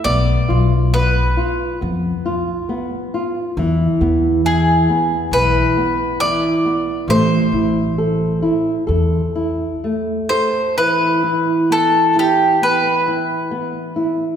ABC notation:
X:1
M:4/4
L:1/8
Q:1/4=67
K:Am
V:1 name="Mandolin"
d2 B2 z4 | z2 ^G2 B2 d2 | c6 z c | [K:Em] B2 A G B3 z |]
V:2 name="Nylon-string guitar"
B, F B, F B, F B, F | E, B, E, B, E, B, E, B, | A, E A E A E A, A | [K:Em] E, E B, E B, E B, E |]
V:3 name="Upright bass" clef=bass
B,,, B,,,3 F,, z3 | E,, E,,3 B,,, z3 | A,,, A,,,3 E,, z3 | [K:Em] z8 |]